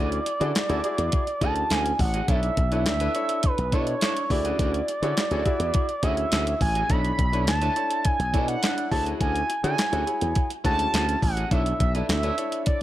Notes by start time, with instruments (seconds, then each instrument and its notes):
Already playing: slap bass D2, clean electric guitar C#4 F#4, grand piano E4 F#4 G#4 D5, analog synth lead D5
0.00 clean electric guitar G#4
0.12 muted clean electric guitar stroke, closed hi-hat
0.26 muted clean electric guitar stroke, closed hi-hat
0.40 slap bass D3, clean electric guitar C#4 F#4 A4, grand piano E4 F#4 G#4 D5, closed hi-hat
0.55 muted clean electric guitar stroke, snare, clap, closed hi-hat
0.69 slap bass D2, clean electric guitar C#4 F#4 A4, grand piano E4 F#4 G#4 D5, closed hi-hat
0.83 grand piano E4 F#4 G#4 D5, muted clean electric guitar stroke, closed hi-hat
0.98 slap bass E2, muted clean electric guitar stroke, closed hi-hat
1.12 muted clean electric guitar stroke, kick, closed hi-hat
1.27 muted clean electric guitar stroke, closed hi-hat
1.41 slap bass D2, clean electric guitar C#4 F#4 G#4, grand piano E4 F#4 G#4 D5, analog synth lead A5, kick, closed hi-hat
1.56 muted clean electric guitar stroke, closed hi-hat
1.70 slap bass D2, clean electric guitar C#4 F#4 G#4, analog synth lead G#5, snare, clap, closed hi-hat
1.85 muted clean electric guitar stroke, closed hi-hat
1.99 slap bass A1, analog synth lead F#5, muted clean electric guitar stroke, kick, open hi-hat
2.14 clean electric guitar C#4 F#4 G#4, closed hi-hat
2.28 slap bass B1, clean electric guitar D4 E4 A4, grand piano D4 E4 A4 C#5, analog synth lead E5, kick, closed hi-hat
2.43 muted clean electric guitar stroke, closed hi-hat
2.57 slap bass B1, muted clean electric guitar stroke, kick, closed hi-hat
2.71 grand piano D4 E4 A4 C#5, clean electric guitar D4 E4 B4, closed hi-hat
2.86 slap bass D2, analog synth lead E5, snare, clap, closed hi-hat
3.00 grand piano D4 E4 A4 B4, clean electric guitar D4 E4 B4, closed hi-hat
3.15 grand piano D4 E4 A4 C#5, muted clean electric guitar stroke, closed hi-hat
3.29 muted clean electric guitar stroke, closed hi-hat
3.43 analog synth lead B4, muted clean electric guitar stroke, kick, closed hi-hat
3.58 slap bass B1, muted clean electric guitar stroke, closed hi-hat
3.72 slap bass B2, grand piano D4 E4 A4 C#5, clean electric guitar D4 E4 A4, analog synth lead C#5, kick, closed hi-hat
3.87 muted clean electric guitar stroke, closed hi-hat
4.01 clean electric guitar D4 E4 A4, snare, clap, closed hi-hat
4.16 muted clean electric guitar stroke, closed hi-hat
4.30 slap bass D2, grand piano E4 F#4 G#4 D5, analog synth lead D5, muted clean electric guitar stroke, kick, open hi-hat
4.45 clean electric guitar C#4 F#4 G#4, closed hi-hat
4.59 slap bass D2, clean electric guitar C#4 F#4 G#4, kick, closed hi-hat
4.74 muted clean electric guitar stroke, closed hi-hat
4.88 muted clean electric guitar stroke, closed hi-hat
5.02 slap bass D3, clean electric guitar C#4 F#4 A4, grand piano E4 F#4 G#4 C#5, closed hi-hat
5.17 muted clean electric guitar stroke, snare, clap, closed hi-hat
5.31 slap bass D2, clean electric guitar C#4 F#4 A4, grand piano E4 F#4 G#4 C#5, closed hi-hat
5.45 grand piano E4 F#4 G#4 E5, muted clean electric guitar stroke, kick, closed hi-hat
5.60 slap bass E2, muted clean electric guitar stroke, closed hi-hat
5.74 muted clean electric guitar stroke, kick, closed hi-hat
5.89 muted clean electric guitar stroke, closed hi-hat
6.03 slap bass D2, clean electric guitar C#4 F#4 G#4, grand piano E4 F#4 G#4 C#5, analog synth lead E5, kick, closed hi-hat
6.17 muted clean electric guitar stroke, closed hi-hat
6.32 slap bass D2, clean electric guitar C#4 F#4 G#4, snare, clap, closed hi-hat
6.47 muted clean electric guitar stroke, closed hi-hat
6.61 slap bass A1, analog synth lead G#5, muted clean electric guitar stroke, kick, open hi-hat
6.75 clean electric guitar C#4 F#4 G#4, closed hi-hat
6.89 slap bass B1, grand piano D4 E4 A4 C#5, clean electric guitar D4 E4 A4, analog synth lead B5, kick, closed hi-hat
7.04 muted clean electric guitar stroke, closed hi-hat
7.18 slap bass B1, muted clean electric guitar stroke, kick, closed hi-hat
7.33 grand piano D4 E4 A4 C#5, clean electric guitar D4 E4 B4, closed hi-hat
7.47 slap bass D2, analog synth lead A5, muted clean electric guitar stroke, snare, clap, closed hi-hat
7.61 grand piano D4 E4 A4 C#5, clean electric guitar D4 E4 B4, closed hi-hat
7.76 grand piano D4 E4 A4 C#5, muted clean electric guitar stroke, closed hi-hat
7.91 muted clean electric guitar stroke, closed hi-hat
8.05 analog synth lead G#5, muted clean electric guitar stroke, kick, closed hi-hat
8.19 slap bass B1, muted clean electric guitar stroke, closed hi-hat
8.33 slap bass B2, grand piano D4 E4 A4 C#5, clean electric guitar D4 E4 A4, kick, closed hi-hat
8.48 analog synth lead F#5, muted clean electric guitar stroke, closed hi-hat
8.63 clean electric guitar D4 E4 A4, snare, clap, closed hi-hat
8.77 muted clean electric guitar stroke, closed hi-hat
8.91 slap bass D2, grand piano E4 F#4 G#4 C#5, analog synth lead A5, muted clean electric guitar stroke, kick, open hi-hat
9.06 clean electric guitar C#4 F#4 G#4, closed hi-hat
9.21 slap bass D2, clean electric guitar C#4 F#4 G#4, analog synth lead G#5, kick, closed hi-hat
9.35 muted clean electric guitar stroke, closed hi-hat
9.49 muted clean electric guitar stroke, closed hi-hat
9.63 slap bass D3, clean electric guitar C#4 F#4 A4, grand piano E4 F#4 G#4 C#5, analog synth lead G#5, closed hi-hat
9.78 muted clean electric guitar stroke, snare, clap, closed hi-hat
9.92 slap bass D2, clean electric guitar C#4 F#4 A4, grand piano E4 F#4 G#4 C#5, closed hi-hat
10.06 grand piano E4 F#4 G#4 C#5, muted clean electric guitar stroke, closed hi-hat
10.21 slap bass E2, muted clean electric guitar stroke, closed hi-hat
10.35 muted clean electric guitar stroke, kick, closed hi-hat
10.50 muted clean electric guitar stroke, closed hi-hat
10.64 slap bass D2, grand piano G#3 E4 F#4 C#5, clean electric guitar C#4 F#4 G#4, analog synth lead A5, kick, closed hi-hat
10.79 muted clean electric guitar stroke, closed hi-hat
10.93 slap bass D2, clean electric guitar C#4 F#4 G#4, snare, clap, closed hi-hat
11.08 muted clean electric guitar stroke, closed hi-hat
11.22 slap bass A1, analog synth lead F#5, muted clean electric guitar stroke, kick, open hi-hat
11.37 clean electric guitar C#4 F#4 G#4, closed hi-hat
11.51 slap bass B1, grand piano D4 E4 A4 C#5, clean electric guitar D4 E4 A4, analog synth lead E5, kick, closed hi-hat
11.66 muted clean electric guitar stroke, closed hi-hat
11.80 slap bass B1, analog synth lead E5, muted clean electric guitar stroke, kick, closed hi-hat
11.94 grand piano D4 E4 A4 E5, clean electric guitar D4 E4 B4, closed hi-hat
12.09 slap bass D2, analog synth lead E5, muted clean electric guitar stroke, snare, clap, closed hi-hat
12.23 grand piano D4 E4 A4 C#5, clean electric guitar D4 E4 B4, closed hi-hat
12.37 grand piano D4 E4 A4 C#5, muted clean electric guitar stroke, closed hi-hat
12.52 muted clean electric guitar stroke, closed hi-hat
12.66 analog synth lead D5, muted clean electric guitar stroke, kick, closed hi-hat